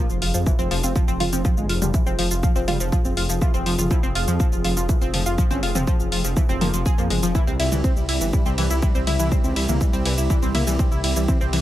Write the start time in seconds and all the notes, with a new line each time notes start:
Already playing: C4 F4 G#4, sub drop
0.10 F1 F3, shaker
0.22 F1 F3 F4 F5, open hi-hat
0.34 F2 F3 F4, shaker
0.46 E3 F3 E4, kick, shaker
0.59 F1 F3 C4 C5, shaker
0.71 F1 F3 F4, open hi-hat
0.83 F1 C4 F4 F5, shaker
0.96 F3 F4, kick, shaker
1.08 F1 F3 C4 C5, shaker
1.20 F1 F3 F4 F5, open hi-hat, mid tom
1.33 F1 F3 C4 F4, shaker
1.45 F3 F4, kick, shaker
1.57 G1 G#3, shaker
1.69 F1 F3 F4 F5, open hi-hat
1.82 F1 F3 G3 F4, mid tom, shaker
1.94 E3 F3 E4, kick, shaker
2.06 F1 F3 C4 C5, shaker
2.19 F1 F3 F4, open hi-hat
2.31 F1 F4 F5, shaker
2.43 F3 F4, kick, shaker
2.56 F1 F3 C4 C5, shaker
2.68 F1 G3 F4 F5, open hi-hat, mid tom
2.80 F1 F3 F4, shaker
2.92 F3 F4, kick, shaker
3.05 F1 C4, shaker
3.17 F1 F3 F4 F5, open hi-hat
3.29 F1 F3 F4, shaker
3.42 E3 E4 F4, kick, shaker
3.54 F1 F3 C4 C5, shaker
3.66 F1 F3 F4, open hi-hat
3.79 F1 F3 F4 F5, mid tom, shaker
3.91 F3 E4 F4, kick, shaker
4.03 F1 F3 C4 C5, shaker
4.15 F1 F3 F4 F5, open hi-hat
4.28 F2 F3 F4, shaker
4.40 F3 F4, kick, shaker
4.52 F1 F3, shaker
4.64 F1 F3 F4 F5, open hi-hat
4.77 F1 F3 F4, shaker
4.89 E3 F3 E4, kick, shaker
5.02 F1 F3 C4 C5, shaker
5.14 F1 F3 F4, open hi-hat, mid tom
5.26 F1 F4 F5, shaker
5.38 F3 F4, kick, shaker
5.51 G1 C4 C#4 C5, shaker
5.63 F1 F3 F4 F5, open hi-hat
5.75 F1 F3 C4 F4, mid tom, shaker
5.87 F3 F4, kick, shaker
6.00 F1 F3, shaker
6.12 F1 F3 F4 F5, open hi-hat
6.25 F1 F3 F4, shaker
6.37 E3 F3 E4, kick, shaker
6.49 F1 F3 C4 C5, shaker
6.61 F1 F3 A#3 F4, open hi-hat, mid tom
6.74 F1 F3 F4, shaker
6.86 F3 G#4 G#5, kick, shaker
6.98 F2 F3 A#3 F4, shaker
7.10 G1 F3 G#3 G#4, open hi-hat, mid tom
7.23 F1 F3 F4, shaker
7.35 E3 E4 G4, kick, shaker
7.47 C2 G3 C4 C5, shaker
7.60 C2 G3 E4 E5, open hi-hat, ride
7.72 C2 E3 G3 E4, mid tom, shaker
7.84 C4 C5, kick, shaker
7.97 C2 G3, shaker
8.09 C2 G3 E4 E5, open hi-hat, ride
8.21 G1 E3 E4, shaker
8.33 E3 G3 E4, kick, shaker
8.46 C2 G3 C4 C5, shaker
8.58 C2 E3 G3 E4, open hi-hat, ride
8.70 C2 E4 E5, shaker
8.83 E3 G3 E4, kick, shaker
8.95 C2 G3 C4 C5, shaker
9.07 C2 G3 E4 E5, open hi-hat, mid tom, ride
9.19 C2 E3 E4, shaker
9.32 G3 C4 C5, kick, shaker
9.44 C#2 C4, shaker
9.56 C2 G3 E4 E5, open hi-hat, ride
9.69 C2 E3 A#3 E4, mid tom, shaker
9.81 E3 G3 E4, kick, shaker
9.93 C2 G3 C4 C5, shaker
10.05 C2 E3 G3 E4, open hi-hat, ride
10.18 C2 E4 E5, shaker
10.30 E3 G3 E4, kick, shaker
10.43 C2 G3 C4 C5, shaker
10.55 C2 A#3 E4 E5, open hi-hat, mid tom, ride
10.67 C2 E3 G3 E4, shaker
10.79 G3 C4 C5, kick, shaker
10.92 C2 E4, shaker
11.04 C2 G3 E4 E5, open hi-hat, ride
11.16 C2 E3 G3 E4, shaker
11.28 E3 C4 E4, kick, shaker
11.41 C2 C3 C4 C5, shaker
11.53 C2 C3 E3 E4, open hi-hat, ride